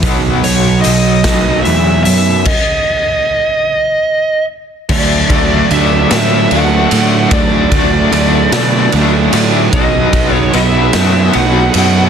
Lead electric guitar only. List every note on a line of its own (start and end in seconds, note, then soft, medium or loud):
0.44 0.81 C#5 medium
0.81 1.62 D#5 loud
1.62 2.02 E5 loud
2.03 2.46 E5 medium
2.46 4.45 D#5 medium
4.91 5.71 D5 medium
5.71 6.54 E5 loud
6.52 7.28 F#5 loud
7.33 8.90 D5 medium
9.73 10.34 D#5 medium
10.34 10.55 C#5 medium
10.55 10.66 D#5 loud
10.66 11.38 E5 loud
11.35 12.09 F#5 loud